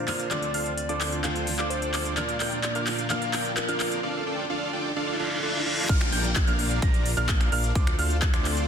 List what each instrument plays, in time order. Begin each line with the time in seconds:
Already playing: analog synth pad A#2 A#3 D4 F4, soft synth lead C5, riser
0.07 steel-string acoustic guitar F3 A#3 D4 F4, supersaw synth D4 F4 A#4 D5 F5, grand piano F6, clap, open hi-hat
0.19 closed hi-hat
0.30 analog synth pad D2 D3 C4 F4, steel-string acoustic guitar D3 A3 C4 D4 F4, supersaw synth D4 F4 A4 C5 D5, soft synth lead D5, grand piano D6, clap, closed hi-hat
0.43 closed hi-hat
0.54 supersaw synth D4 F4 A4 C5 F5, grand piano F6, open hi-hat
0.66 closed hi-hat
0.77 soft synth lead D5, closed hi-hat
0.89 supersaw synth D4 F4 A4 C5 D5, grand piano D6, closed hi-hat
1.01 clap, open hi-hat
1.12 closed hi-hat
1.23 steel-string acoustic guitar D3 A3 C4 D4 F4, supersaw synth D4 F4 A4 C5 G5, soft synth lead F5, grand piano G6, clap, closed hi-hat
1.36 closed hi-hat
1.46 steel-string acoustic guitar D3 A3 C4 D4 F4, open hi-hat
1.59 supersaw synth D4 F4 A4 C5 D5, grand piano D6, clap
1.70 soft synth lead C5, closed hi-hat
1.82 closed hi-hat
1.94 supersaw synth D4 F4 A4 C5 D5, grand piano D6, clap, open hi-hat
2.05 closed hi-hat
2.16 steel-string acoustic guitar A#2 F3 A#3 D4 F4, analog synth pad A#2 A#3 D4, supersaw synth D4 F4 A#4 D5 F5, soft synth lead D5, grand piano F6, clap, closed hi-hat
2.29 closed hi-hat
2.40 supersaw synth D4 F4 A#4 D5 G5, grand piano G6, clap, open hi-hat
2.52 closed hi-hat
2.63 soft synth lead D5, clap, closed hi-hat
2.75 supersaw synth D4 F4 A#4 D5 F5, grand piano F6, closed hi-hat
2.87 clap, open hi-hat
2.98 closed hi-hat
3.09 steel-string acoustic guitar A#2 F3 A#3 D4 F4, supersaw synth D4 F4 A#4 D5 F5, soft synth lead F5, grand piano F6, clap, closed hi-hat
3.22 closed hi-hat
3.33 supersaw synth D4 F4 A#4 D5 G5, grand piano G6, clap, open hi-hat
3.45 closed hi-hat
3.56 soft synth lead A#4, clap, closed hi-hat
3.68 supersaw synth D4 F4 A#4 D5 F5, grand piano F6, closed hi-hat
3.80 clap, open hi-hat
3.92 closed hi-hat
4.03 supersaw synth D4 F4 A4 D5 F5
4.26 supersaw synth D4 F4 A4 D5 G5
4.50 supersaw synth D4 F4 A4 D5 F5
4.73 supersaw synth D4 F4 A4 D5 G5
4.96 supersaw synth D4 F4 A4 D5 F5, reverse cymbal
5.20 supersaw synth D4 F4 A4 D5 F5
5.43 supersaw synth D4 F4 A4 D5 F5
5.66 supersaw synth D4 F4 A4 D5 F5
5.89 analog synth bass A#1, analog synth pad A#3 D4 F4, supersaw synth D4 F4 A#4 F5, grand piano F6, kick, closed hi-hat, crash, downlifter
6.01 finger snap, closed hi-hat
6.13 analog synth bass A#1, supersaw synth D4 F4 A#4 D5 G5, grand piano G6, open hi-hat
6.24 closed hi-hat
6.36 kick, clap, closed hi-hat
6.47 analog synth bass A#1, supersaw synth D4 F4 A#4 D5 F5, grand piano F6, closed hi-hat
6.59 open hi-hat
6.71 closed hi-hat
6.82 analog synth bass A#1, grand piano A#6, kick, closed hi-hat
6.94 closed hi-hat
7.06 open hi-hat
7.17 analog synth bass A#1, supersaw synth D4 F4 A#4 D5 F5, grand piano F6, closed hi-hat
7.29 kick, clap, closed hi-hat
7.41 finger snap, closed hi-hat
7.52 analog synth bass A#1, supersaw synth D4 F4 A#4 D5 F5, grand piano F6, open hi-hat
7.64 closed hi-hat
7.75 analog synth bass D2, analog synth pad D3 A3 C4, supersaw synth F4 A4 C5, grand piano D6, kick, closed hi-hat
7.87 finger snap, closed hi-hat
7.99 analog synth bass D2, supersaw synth D4 F4 A4 C5 F5, grand piano F6, open hi-hat
8.10 closed hi-hat
8.22 kick, clap, closed hi-hat
8.33 analog synth bass D2, supersaw synth D4 F4 A4 C5 D5, grand piano D6, finger snap, closed hi-hat
8.45 clap, open hi-hat
8.57 closed hi-hat